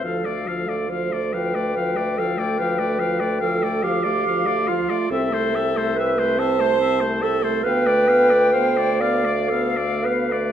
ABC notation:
X:1
M:12/8
L:1/16
Q:3/8=47
K:Ddor
V:1 name="Flute"
f4 z2 g12 f6 | e6 a4 z2 g6 f6 |]
V:2 name="Oboe"
f d f d f d f d f d f d f d f d f d f d f d f d | e c e c e c e c e c e c f d f d f d f d f d f d |]
V:3 name="Clarinet"
A4 c2 B4 A2 B4 A2 G4 F2 | A4 B2 c4 A2 B4 c2 d2 A2 B2 |]
V:4 name="French horn"
F, A, F, A, F, A, F, A, F, A, F, A, F, A, F, A, F, A, F, A, F, A, F, A, | C A, C A, C A, C A, C A, C A, B, A, B, A, B, A, B, A, B, A, B, A, |]
V:5 name="Bassoon" clef=bass
D,,16- D,,6 z2 | C,,12 D,,12 |]